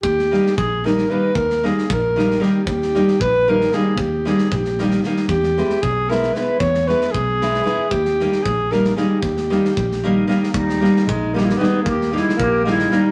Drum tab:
SD |-ooo--oo--|-ooo--ooo-|-ooo---oo-|--oo-ooooo|
BD |o---o-----|o---o-----|o---o-----|o---o-----|

SD |-ooo--ooo-|-ooo--ooo-|-ooo--ooo-|-ooo-o--oo|
BD |o---o-----|o---o-----|o---o-----|o---o-----|

SD |-ooo--ooo-|-ooo--ooo-|
BD |o---o-----|o---o-----|